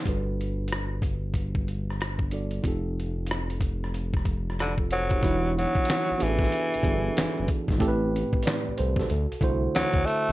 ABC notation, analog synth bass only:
X:1
M:4/4
L:1/16
Q:"Swing 16ths" 1/4=93
K:Em
V:1 name="Analog synth bass" clef=bass
G,,,16 | =F,,,16 | E,,,3 z2 A,,, A,,,2 z G,,, G,,,2 F,,, F,,, z ^G,,, | A,,,3 z2 C,, C,,2 D,, C,, C,,2 D,, D,, z F,,, |]